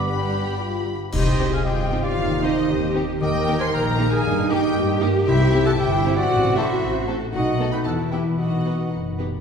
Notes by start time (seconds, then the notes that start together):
Already playing: G1 G2 B3 D4 G4 D6
0.07 G3 G4 B4 B5
0.33 D4 B4
0.59 F4
0.85 G4
1.10 C2 C3 C4 D#4 G4 C5 D#5, concert bass drum, crash
1.26 C4
1.39 C4 D#4 G4
1.51 G#4 D#5 F5 G#5
1.65 G1 F4 G4 D#5 G5
1.78 C5
1.91 C4 D#4 G4
2.03 D#4 F4 D5 F5
2.16 D#2 D#3 D#4
2.29 D#4
2.42 C4 D#4 G4 C5 D#5
2.55 G5
2.68 D#2 G4 C6
2.81 D#5
2.94 C4 D#4 G4 C5
3.08 G4
3.20 D#2 D#3 A#3 D#4 G4 A#4 D#5 G5
3.34 D#4
3.46 A#3 D#4 G4 A#4
3.59 C5 G5 G#5 C6
3.71 A#1 A#4 G5 A#5
3.86 D#5
3.97 A#3 D#4 G4 A#4
4.10 G4 G#4 F5 G#5
4.24 G2 D#4
4.37 A#3
4.49 A#3 D#4 G4 D#5 G5
4.53 G4
4.62 D#5
4.75 G2 G4 G5
4.87 A#4
5.00 A#3 D#4 G4
5.14 D#4
5.26 C2 C3 C4 E4 G4 C5 E5
5.39 C4
5.52 C4 E4 G4
5.65 A4 E5 F#5 A5
5.77 G1 E4 G4 E5 G5
5.90 C5
6.03 C4 E4 G4
6.15 E4 F#4 D5 F#5
6.29 A1 A2 F#4
6.43 C4
6.55 C4 E4 F#4 A4 C5 E5
6.68 F#5
6.82 A1 A5
6.94 C5
7.07 C4 F#4 A4
7.20 F#4
7.33 B1 B2 A3 D#4 F#4 D#5 F#5
7.47 B3
7.59 B3 D#4 A4
7.72 B4 D#5 G5 B5
7.84 E2 E3 B3 E4 A4 F#5 A5
8.00 E4
8.11 B3 E4 G4 B4 E5 G5
8.25 B5
8.37 B1 B2 B3 D#4 F#4 D#5 F#5
8.52 B3
8.65 B3 D#4 B4
8.78 D#5
8.92 F#1 D#4 B5
9.06 B4
9.18 B3 D#4 G4 B4
9.33 B3